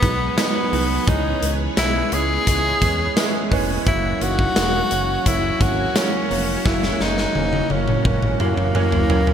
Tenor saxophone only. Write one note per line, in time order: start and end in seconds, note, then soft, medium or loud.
0.00 0.38 B3 loud
0.39 1.10 B3 loud
1.09 1.51 D#4 loud
1.79 2.15 E4 loud
2.13 3.52 G#4 loud
3.88 4.24 E4 loud
4.23 5.29 F#4 loud
5.28 5.64 E4 loud
5.62 5.98 F#4 loud
5.97 6.68 C#4 medium
6.67 7.03 E4 loud
7.01 7.73 D#4 medium
7.71 8.40 C#4 medium
8.41 9.34 A#3 loud